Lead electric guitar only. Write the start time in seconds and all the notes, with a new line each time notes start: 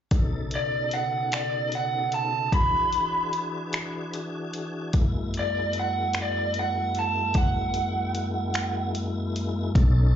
0.55 D5
0.93 F#5
1.34 D5
1.75 F#5
2.14 A5
2.54 B5
5.39 D5
5.80 F#5
6.22 D5
6.59 F#5
6.99 A5
7.37 F#5